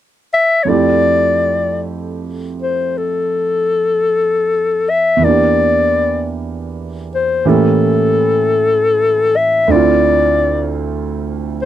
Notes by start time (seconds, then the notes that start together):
0.34 E5
0.63 F2 F3 C#5
0.68 A3 E4 G4 D5
2.62 C5
2.98 A4
4.90 E5
5.17 E2 E3
5.22 A#3 D4 D5
5.28 G4
7.15 C5
7.45 A2 E3 A#3 C#4 G4 A4
9.36 E5
9.67 D2 D3 C4 E4 D5
9.73 F4
11.62 C5